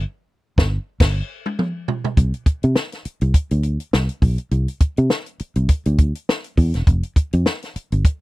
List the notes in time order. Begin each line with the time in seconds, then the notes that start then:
0.58 G1, kick, snare
1.00 G1, kick, snare, crash
1.46 high tom
1.59 mid tom
1.88 floor tom
2.04 floor tom
2.17 C2, kick, closed hi-hat
2.34 closed hi-hat
2.46 muted fingered electric bass stroke, kick, closed hi-hat
2.63 C3, closed hi-hat
2.76 snare
2.92 snare, closed hi-hat
3.05 muted fingered electric bass stroke, closed hi-hat
3.21 C2, closed hi-hat
3.34 muted fingered electric bass stroke, kick, closed hi-hat
3.51 D2, closed hi-hat
3.63 closed hi-hat
3.80 closed hi-hat
3.93 C2, snare
4.09 closed hi-hat
4.22 B1, kick, open hi-hat
4.38 closed hi-hat
4.51 C2, closed hi-hat
4.68 closed hi-hat
4.80 muted fingered electric bass stroke, kick, closed hi-hat
4.97 C3, closed hi-hat
5.10 snare
5.26 closed hi-hat
5.39 muted fingered electric bass stroke, closed hi-hat
5.55 C2, closed hi-hat
5.69 muted fingered electric bass stroke, kick, closed hi-hat
5.85 D2, closed hi-hat
5.98 kick, closed hi-hat
6.15 closed hi-hat
6.29 snare
6.44 closed hi-hat
6.57 E2, kick, open hi-hat
6.74 E1, snare, closed hi-hat
6.87 F1, kick, closed hi-hat
7.03 closed hi-hat
7.16 muted fingered electric bass stroke, kick, closed hi-hat
7.33 F2, closed hi-hat
7.46 snare
7.62 snare, closed hi-hat
7.76 muted fingered electric bass stroke, closed hi-hat
7.92 G1, closed hi-hat
8.05 muted fingered electric bass stroke, kick, closed hi-hat